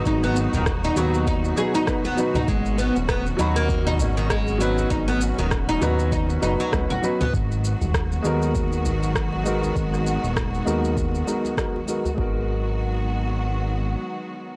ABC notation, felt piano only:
X:1
M:4/4
L:1/16
Q:"Swing 16ths" 1/4=99
K:G#m
V:1 name="Felt piano"
[F,B,DFB]6 [F,B,DFB]4 [F,B,DFB]2 [F,B,DFB] z [F,B,DFB] z | z6 [F,DFb]8 [F,B,DFB]2- | [F,B,DFB]6 [F,B,DFB]4 [F,B,DFB]2 [F,B,DFB] z [F,B,DFB] z | z6 [G,B,DFA]8 [G,B,DFA]2- |
[G,B,DFA]6 [G,B,DFA]4 [G,B,DFA]2 [G,B,DFA] z [G,B,DFA] z | [G,B,DFA]16 |]